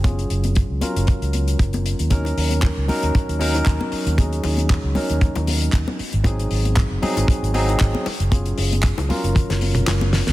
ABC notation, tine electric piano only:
X:1
M:4/4
L:1/8
Q:"Swing 16ths" 1/4=116
K:Ebdor
V:1 name="Tine electric piano"
[G,DFA]3 [G,DFB]4- [G,DFB] | [G,DEB]3 [G,DEB]2 [G,DEB]3 | [G,DEA]3 [G,DEB]4 z | [G,CEA]3 [G,CEA]2 [G,CEA]2 z |
[G,DFA]3 [G,DFB]4- [G,DFB] |]